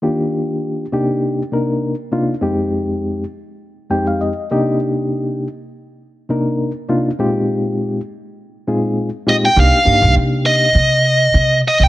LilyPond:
<<
  \new Staff \with { instrumentName = "Lead electric guitar" } { \time 4/4 \key c \minor \tempo 4 = 101 r1 | r1 | r1 | r2. r8 ees''16 g''16 |
f''4 r8 ees''2 ees''16 g''16 | }
  \new Staff \with { instrumentName = "Reed electric piano" } { \time 4/4 \key c \minor << { r1 | r2 r8 g''16 f''16 ees''8 ees''8 | r1 | r1 |
r1 | } \\ { <ees bes d' f' g'>4. <c bes d' ees' g'>4 <c bes d' ees' bes'>8 r8 <c bes d' ees' f'>8 | <f, aes c' ees' g'>4. r4 <f, aes c' ees' g'>8 r8 <c bes d' ees' g'>8~ | <c bes d' ees' g'>4 r4. <c bes d' ees' bes'>8 r8 <c bes d' ees' f'>8 | <bes, aes c' ees' f' g'>4. r4 <bes, aes c' ees' f' aes'>8 r8 <bes, aes c' ees' f' g'>8 |
<bes d' ees' g'>8 <bes d' ees' g'>4. r2 | } >> }
  \new Staff \with { instrumentName = "Upright bass" } { \clef bass \time 4/4 \key c \minor r1 | r1 | r1 | r1 |
c,16 r16 g,16 c,16 c4 c4 c8 r16 c,16 | }
>>